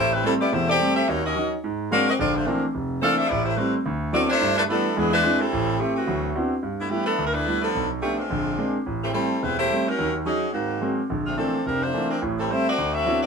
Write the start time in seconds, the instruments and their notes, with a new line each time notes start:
Already playing: grand piano A1, saxophone section A3 E4 G4
0.00 saxophone section C5
0.14 saxophone section G3 C4 E4 B4
0.24 grand piano G3 A3 C4, saxophone section G3 C4 E4 A4
0.41 saxophone section B3 E4 G4 D5
0.53 grand piano E1 E2, saxophone section A3 E4 G4 C5
0.69 saxophone section C4 G4 A4 D5
0.80 grand piano G3 A3 C4
0.96 saxophone section C4 G4 A4 E5
1.08 grand piano D#2, saxophone section A#3 D#4 F#4 C#5
1.25 saxophone section C#4 F#4 A#4 D#5
1.36 grand piano F#3 C#4 D#4
1.64 grand piano G#2
1.91 grand piano F#3 G#3 A#3 C4, saxophone section D4 F#4 A#4 F5
2.09 saxophone section C4 F#4 A#4 D#5
2.19 grand piano A#1 D3, saxophone section C4 F4 A4 D5
2.37 saxophone section A3 D4 F4 C5
2.46 grand piano E3 A3 A#3 C4 D4, saxophone section F3 C4 D4 A#4
2.75 grand piano F1
3.02 grand piano E3 A3 A#3 C4 D4, saxophone section D4 A4 C5 F5
3.18 saxophone section D4 A4 C5 E5
3.28 grand piano A1, saxophone section B3 E4 G4 D5
3.45 saxophone section A3 E4 G4 C5
3.57 saxophone section G3 C4 E4 B4, grand piano G3 A3 C4
3.86 grand piano D2
4.13 grand piano F#3 B3 C4 D4 E4, saxophone section C4 F#4 A4 D5
4.30 saxophone section A3 D4 E4 C5
4.41 grand piano G2
4.57 saxophone section A3 D4 E4 B4
4.68 saxophone section E3 B3 D4 A4, grand piano G3 A3 B3 E4
4.97 grand piano E2 G#3, saxophone section E3 B3 D4 G#4
5.13 saxophone section G#3 D4 E4 B4
5.24 grand piano G#3 C4 D4 E4
5.40 saxophone section G3 C4 E4 A4
5.52 grand piano A1
5.79 saxophone section E3 A3 C4 G4, grand piano A3 C4 G4
5.96 saxophone section E3 A3 C4 F#4
6.07 grand piano D2 F#3
6.35 grand piano B3 C4 D4 E4 F#4
6.63 grand piano G2
6.79 saxophone section A3 B3 D4 E4
6.90 saxophone section E3 B3 D4 G4, grand piano G3 A3 B3 E4
7.06 saxophone section E3 B3 D4 A4
7.18 grand piano D2
7.26 saxophone section A#4
7.34 saxophone section A3 D4 E4 B4
7.46 grand piano G3 A3 B3 E4
7.62 saxophone section F3 B3 D4 A4
7.75 grand piano B1
8.02 saxophone section F3 A3 C4 G4, grand piano A3 B3 D4
8.18 saxophone section G#3 C4 D4 F4
8.30 grand piano A#1 D3
8.58 grand piano G#3 A#3 C4 D4
8.86 grand piano A1
9.03 saxophone section E3 A3 C4 G4
9.13 saxophone section G3 C4 E4 A4, grand piano G3 A3 C4
9.42 grand piano E1, saxophone section G3 C4 E4 B4
9.59 saxophone section A3 E4 G4 C5
9.70 grand piano G3 A3 C4
9.87 saxophone section F#3 C#4 D#4 A#4
9.98 grand piano D#2 D#3
10.25 saxophone section F#3 C#4 D#4 G#4, grand piano F#3 C#4 D#4
10.52 grand piano G#2, saxophone section D#3 A#3 C4 F#4
10.81 grand piano F#3 G#3 A#3 C4
11.10 grand piano A#1 D3
11.26 saxophone section A3 C4 D4 F4
11.37 grand piano E3 A3 A#3 C4 D4, saxophone section F3 C4 D4 A4
11.66 grand piano F1, saxophone section F3 C4 D4 A#4
11.82 saxophone section A3 D4 F4 C5
11.94 grand piano E3 A3 A#3 C4 D4
12.11 saxophone section F3 C4 D4 A#4
12.22 grand piano A1 A2
12.39 saxophone section G3 C4 E4 A4
12.50 grand piano G3 A3 C4, saxophone section A3 E4 G4 C5
12.68 saxophone section C4 F#4 A4 D5
12.78 grand piano D2
12.94 saxophone section C4 F#4 A4 E5
13.05 grand piano F#3 B3 C4 D4 E4
13.22 saxophone section C4 F#4 A4 D5